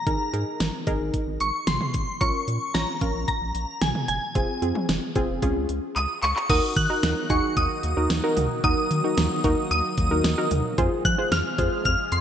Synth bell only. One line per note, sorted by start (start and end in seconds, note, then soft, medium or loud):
0.00 0.30 A#5 medium
1.41 1.68 C#6 medium
1.67 2.23 C6 loud
2.21 2.76 C#6 loud
2.74 3.27 A#5 medium
3.28 3.83 A#5 medium
3.82 4.07 G#5 medium
4.08 4.58 G#5 medium
5.96 6.08 D#6 medium
6.23 6.48 C#6 medium
6.50 6.75 D#6 loud
6.77 7.32 F#6 loud
7.30 7.42 C#6 medium
7.57 8.33 D#6 medium
8.64 9.70 D#6 loud
9.71 10.47 D#6 loud
11.05 11.17 F#6 loud
11.32 11.82 F6 loud
11.85 11.97 F6 loud
12.12 12.21 C6 medium